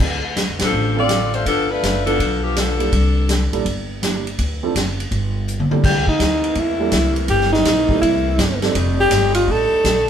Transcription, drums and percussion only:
0.00 crash medium
0.36 snare medium
0.36 hi-hat pedal medium
0.36 ride medium
0.59 snare medium
0.59 ride medium
1.09 snare medium
1.09 hi-hat pedal medium
1.09 ride medium
1.34 ride soft
1.46 kick soft
1.46 ride medium
1.83 snare medium
1.83 hi-hat pedal medium
1.83 ride medium
2.07 ride soft
2.19 kick soft
2.19 ride medium
2.56 snare medium
2.56 hi-hat pedal medium
2.56 ride medium
2.80 ride soft
2.92 kick soft
2.92 ride medium
3.29 snare medium
3.29 hi-hat pedal medium
3.29 ride medium
3.53 ride soft
3.65 kick soft
3.65 ride medium
4.03 snare medium
4.03 hi-hat pedal medium
4.03 ride medium
4.27 ride soft
4.39 kick soft
4.39 ride medium
4.75 snare medium
4.75 hi-hat pedal medium
4.75 ride medium
5.00 ride soft
5.11 kick soft
5.11 ride soft
5.48 hi-hat pedal soft
5.60 high tom medium
5.71 high tom medium
5.84 kick medium
5.84 snare soft
5.84 crash medium
6.07 kick medium
6.20 kick soft
6.20 snare medium
6.20 hi-hat pedal medium
6.20 ride medium
6.44 ride soft
6.55 kick soft
6.55 ride soft
6.91 kick soft
6.91 snare medium
6.91 hi-hat pedal medium
6.91 ride medium
7.16 ride soft
7.28 kick soft
7.28 ride medium
7.41 snare soft
7.54 snare soft
7.65 kick soft
7.65 snare medium
7.65 hi-hat pedal medium
7.65 ride medium
7.89 kick medium
8.02 kick soft
8.02 ride medium
8.38 kick soft
8.38 snare medium
8.38 hi-hat pedal medium
8.38 ride medium
8.62 snare soft
8.62 ride soft
8.75 kick soft
8.75 ride medium
9.11 kick soft
9.11 snare medium
9.11 hi-hat pedal medium
9.11 ride medium
9.34 ride medium
9.48 kick soft
9.84 kick soft
9.84 snare medium
9.84 hi-hat pedal medium
9.84 ride medium

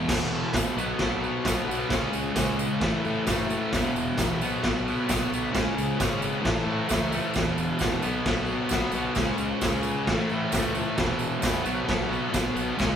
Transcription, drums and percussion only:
0.09 kick loud
0.09 snare loud
0.09 crash loud
0.09 tambourine medium
0.09 crash medium
0.53 kick loud
0.53 snare loud
0.53 tambourine medium
0.53 crash medium
0.78 tambourine medium
0.99 kick loud
0.99 snare loud
0.99 crash medium
1.24 tambourine soft
1.45 kick loud
1.45 snare loud
1.45 tambourine loud
1.45 crash medium
1.71 tambourine medium
1.90 kick loud
1.90 snare loud
1.90 tambourine medium
1.90 crash medium
2.13 tambourine medium
2.36 kick loud
2.36 snare loud
2.36 tambourine loud
2.36 crash medium
2.59 tambourine medium
2.81 kick loud
2.81 snare loud
2.81 crash medium
3.05 tambourine soft
3.26 kick loud
3.26 snare loud
3.26 tambourine loud
3.26 crash medium
3.50 tambourine medium
3.73 kick loud
3.73 snare loud
3.73 tambourine medium
3.73 crash medium
3.96 tambourine medium
4.17 kick loud
4.17 snare loud
4.17 tambourine loud
4.17 crash medium
4.42 tambourine medium
4.63 kick loud
4.63 snare loud
4.63 crash medium
4.88 tambourine soft
5.09 kick loud
5.09 snare loud
5.09 tambourine loud
5.09 crash medium
5.33 tambourine medium
5.55 kick loud
5.55 snare loud
5.55 tambourine medium
5.55 crash medium
5.78 tambourine medium
6.00 kick loud
6.00 snare loud
6.00 tambourine medium
6.00 crash medium
6.22 tambourine medium
6.45 kick loud
6.45 snare loud
6.45 crash medium
6.89 kick loud
6.89 snare loud
6.89 tambourine loud
6.89 crash medium
7.12 tambourine medium
7.34 kick loud
7.34 snare loud
7.34 tambourine medium
7.34 crash medium
7.58 tambourine medium
7.79 kick loud
7.79 snare loud
7.79 tambourine medium
7.79 crash medium
8.02 tambourine medium
8.26 kick loud
8.26 snare loud
8.26 crash medium
8.46 tambourine soft
8.69 kick loud
8.69 snare loud
8.69 tambourine loud
8.69 crash medium
8.92 tambourine medium
9.15 kick loud
9.15 snare loud
9.15 tambourine medium
9.15 crash medium
9.38 tambourine medium
9.61 kick loud
9.61 snare loud
9.61 tambourine medium
9.61 crash medium
9.83 tambourine medium
10.07 kick loud
10.07 snare loud
10.07 crash medium
10.29 tambourine soft
10.52 kick loud
10.52 snare loud
10.52 tambourine loud
10.52 crash medium
10.75 tambourine medium
10.97 kick loud
10.97 snare loud
10.97 tambourine medium
10.97 crash medium
11.19 tambourine medium
11.42 kick loud
11.42 snare loud
11.42 tambourine medium
11.42 crash medium
11.66 tambourine medium
11.88 kick loud
11.88 snare loud
11.88 crash medium
12.13 tambourine soft
12.34 kick loud
12.34 snare loud
12.34 tambourine loud
12.34 crash medium
12.57 tambourine medium
12.79 kick loud
12.79 snare loud
12.79 tambourine medium
12.79 crash medium

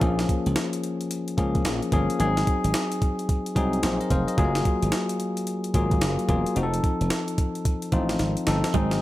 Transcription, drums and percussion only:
0.01 kick loud
0.01 closed hi-hat medium
0.19 snare medium
0.19 closed hi-hat medium
0.29 kick medium
0.29 closed hi-hat medium
0.46 closed hi-hat medium
0.56 snare loud
0.56 closed hi-hat medium
0.73 closed hi-hat medium
0.84 closed hi-hat medium
1.01 closed hi-hat soft
1.11 closed hi-hat medium
1.28 closed hi-hat medium
1.38 kick medium
1.38 closed hi-hat medium
1.55 kick medium
1.55 closed hi-hat soft
1.65 snare loud
1.65 closed hi-hat medium
1.83 closed hi-hat soft
1.92 kick medium
1.92 closed hi-hat medium
2.10 closed hi-hat medium
2.20 closed hi-hat medium
2.37 snare medium
2.37 closed hi-hat medium
2.47 kick medium
2.47 closed hi-hat medium
2.64 closed hi-hat medium
2.74 snare loud
2.74 closed hi-hat medium
2.92 closed hi-hat medium
3.02 kick medium
3.02 closed hi-hat medium
3.19 closed hi-hat soft
3.29 kick medium
3.29 closed hi-hat medium
3.46 closed hi-hat medium
3.56 kick medium
3.56 closed hi-hat medium
3.73 closed hi-hat soft
3.83 snare loud
3.83 closed hi-hat medium
4.01 closed hi-hat soft
4.10 kick medium
4.10 closed hi-hat medium
4.28 closed hi-hat soft
4.38 kick loud
4.38 closed hi-hat medium
4.55 snare medium
4.55 closed hi-hat medium
4.65 kick medium
4.65 closed hi-hat medium
4.82 closed hi-hat medium
4.92 snare loud
4.92 closed hi-hat medium
5.09 closed hi-hat medium
5.20 closed hi-hat medium
5.37 closed hi-hat medium
5.47 closed hi-hat medium
5.64 closed hi-hat medium
5.74 kick medium
5.74 closed hi-hat medium
5.91 kick medium
5.91 closed hi-hat soft
6.01 snare loud
6.01 closed hi-hat medium
6.19 closed hi-hat soft
6.29 kick medium
6.29 closed hi-hat medium
6.46 closed hi-hat medium
6.56 closed hi-hat medium
6.74 closed hi-hat medium
6.84 kick medium
6.84 closed hi-hat medium
7.01 closed hi-hat medium
7.10 snare loud
7.10 closed hi-hat medium
7.28 closed hi-hat medium
7.38 kick medium
7.38 closed hi-hat medium
7.55 closed hi-hat soft
7.65 kick loud
7.65 closed hi-hat medium
7.82 closed hi-hat medium
7.92 kick medium
7.92 closed hi-hat medium
8.09 snare medium
8.09 closed hi-hat soft
8.19 snare medium
8.19 closed hi-hat medium
8.37 closed hi-hat soft
8.47 snare medium
8.47 closed hi-hat medium
8.64 snare medium
8.64 closed hi-hat soft
8.74 kick loud
8.74 closed hi-hat medium
8.91 snare medium
8.91 closed hi-hat medium

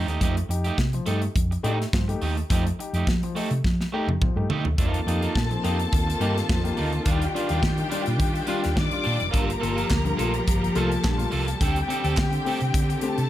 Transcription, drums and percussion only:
0.08 closed hi-hat soft
0.21 kick loud
0.21 closed hi-hat medium
0.37 closed hi-hat soft
0.51 closed hi-hat medium
0.65 closed hi-hat soft
0.78 kick medium
0.78 snare loud
0.93 closed hi-hat soft
1.06 closed hi-hat medium
1.22 closed hi-hat soft
1.36 kick loud
1.36 closed hi-hat medium
1.52 closed hi-hat soft
1.64 closed hi-hat medium
1.81 snare soft
1.81 closed hi-hat soft
1.93 kick loud
1.93 snare loud
2.09 closed hi-hat soft
2.22 open hi-hat medium
2.37 closed hi-hat soft
2.50 kick loud
2.50 closed hi-hat medium
2.67 closed hi-hat soft
2.80 closed hi-hat medium
2.94 closed hi-hat soft
3.07 kick loud
3.07 snare loud
3.23 closed hi-hat soft
3.36 open hi-hat medium
3.51 closed hi-hat soft
3.64 kick loud
3.64 snare medium
3.81 snare soft
4.09 high tom medium
4.22 kick loud
4.22 mid tom medium
4.50 floor tom medium
4.65 floor tom medium
4.78 kick loud
4.78 closed hi-hat medium
4.94 closed hi-hat soft
5.08 closed hi-hat medium
5.22 closed hi-hat soft
5.35 kick medium
5.35 snare loud
5.51 closed hi-hat soft
5.64 closed hi-hat medium
5.79 closed hi-hat soft
5.93 kick loud
5.93 closed hi-hat medium
6.10 closed hi-hat medium
6.21 closed hi-hat medium
6.37 snare soft
6.37 closed hi-hat soft
6.49 kick loud
6.49 snare loud
6.65 closed hi-hat soft
6.77 open hi-hat medium
6.93 closed hi-hat soft
7.06 kick loud
7.06 closed hi-hat medium
7.22 closed hi-hat medium
7.36 closed hi-hat medium
7.49 closed hi-hat soft
7.63 kick medium
7.63 snare loud
7.78 closed hi-hat soft
7.92 closed hi-hat medium
8.06 closed hi-hat soft
8.20 kick loud
8.20 closed hi-hat medium
8.35 closed hi-hat soft
8.47 closed hi-hat medium
8.64 snare soft
8.64 closed hi-hat soft
8.77 kick loud
8.77 snare loud
8.91 closed hi-hat soft
9.04 open hi-hat medium
9.20 closed hi-hat soft
9.34 kick loud
9.34 closed hi-hat medium
9.50 closed hi-hat medium
9.63 closed hi-hat medium
9.78 closed hi-hat soft
9.91 kick medium
9.91 snare loud
9.91 clap medium
10.06 closed hi-hat soft
10.19 closed hi-hat medium
10.34 closed hi-hat soft
10.48 kick loud
10.48 closed hi-hat medium
10.64 closed hi-hat medium
10.75 closed hi-hat medium
10.92 closed hi-hat soft
11.04 kick loud
11.04 snare loud
11.04 clap medium
11.19 closed hi-hat soft
11.32 open hi-hat medium
11.48 closed hi-hat soft
11.61 kick loud
11.61 closed hi-hat medium
11.76 closed hi-hat soft
11.90 closed hi-hat medium
12.05 closed hi-hat soft
12.17 kick loud
12.17 snare loud
12.17 clap loud
12.33 closed hi-hat soft
12.46 open hi-hat medium
12.61 closed hi-hat soft
12.74 kick loud
12.74 closed hi-hat medium
12.90 closed hi-hat soft
13.01 closed hi-hat medium
13.18 closed hi-hat soft

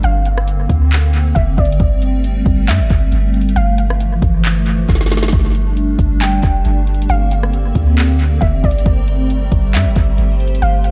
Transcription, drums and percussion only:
0.03 closed hi-hat medium
0.25 closed hi-hat medium
0.38 cross-stick medium
0.48 closed hi-hat medium
0.69 kick medium
0.69 closed hi-hat medium
0.92 clap loud
0.92 closed hi-hat medium
1.14 closed hi-hat medium
1.36 kick loud
1.36 closed hi-hat medium
1.58 kick medium
1.58 closed hi-hat soft
1.65 closed hi-hat medium
1.72 closed hi-hat medium
1.80 kick loud
1.80 closed hi-hat medium
2.02 closed hi-hat medium
2.24 closed hi-hat medium
2.46 kick medium
2.46 closed hi-hat medium
2.68 clap loud
2.68 closed hi-hat medium
2.90 kick loud
2.90 closed hi-hat medium
3.12 closed hi-hat medium
3.34 closed hi-hat soft
3.41 closed hi-hat medium
3.49 closed hi-hat medium
3.56 closed hi-hat medium
3.78 closed hi-hat medium
3.90 cross-stick medium
4.00 closed hi-hat medium
4.22 kick medium
4.22 closed hi-hat medium
4.44 clap loud
4.44 closed hi-hat medium
4.66 closed hi-hat medium
4.89 kick loud
4.89 snare medium
4.89 closed hi-hat medium
4.95 snare medium
5.01 snare medium
5.06 snare medium
5.10 snare medium
5.10 closed hi-hat medium
5.17 snare medium
5.23 snare loud
5.28 snare medium
5.33 kick loud
5.33 closed hi-hat medium
5.55 closed hi-hat medium
5.77 closed hi-hat medium
5.99 kick medium
5.99 closed hi-hat medium
6.21 clap loud
6.21 closed hi-hat medium
6.43 kick loud
6.43 closed hi-hat medium
6.65 closed hi-hat medium
6.87 closed hi-hat soft
6.94 closed hi-hat medium
7.02 closed hi-hat medium
7.09 closed hi-hat medium
7.31 closed hi-hat medium
7.43 cross-stick medium
7.53 closed hi-hat medium
7.75 kick medium
7.75 closed hi-hat medium
7.98 clap loud
7.98 closed hi-hat medium
8.19 closed hi-hat medium
8.42 kick medium
8.42 closed hi-hat medium
8.64 kick medium
8.64 closed hi-hat soft
8.71 closed hi-hat medium
8.78 closed hi-hat medium
8.86 kick loud
8.86 closed hi-hat medium
9.08 closed hi-hat medium
9.30 closed hi-hat medium
9.52 kick loud
9.52 closed hi-hat medium
9.74 clap loud
9.74 closed hi-hat medium
9.96 kick loud
9.96 closed hi-hat medium
10.18 closed hi-hat medium
10.40 closed hi-hat soft
10.48 closed hi-hat medium
10.55 closed hi-hat medium
10.62 closed hi-hat medium
10.84 closed hi-hat medium

